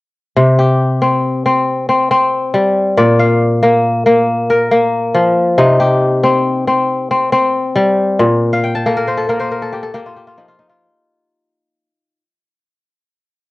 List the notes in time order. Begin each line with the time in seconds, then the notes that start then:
0.36 C3
0.59 G4
1.02 C4
1.46 C4
1.89 C4
2.11 C4
2.54 G3
2.97 A#2 D5
3.19 F5
3.63 A#3
4.06 A#3
4.50 A#4
4.72 A#3
5.15 F3
5.58 C3 D#4
5.80 G4
6.23 C4
6.67 C4
7.11 C4
7.32 C4
7.76 G3
8.19 A#2
8.53 F5
8.64 G5
8.75 A5
8.86 A#3 A4
8.97 A#4
9.07 C5
9.17 A4
9.29 A#3 A#4
9.40 C5
9.51 A#4
9.62 A4
9.73 G4
9.83 A4
9.94 A#3 G4
10.06 F4
10.16 G4
10.27 F4
10.37 F3 D#4
10.48 F4
10.59 D#4
10.70 F4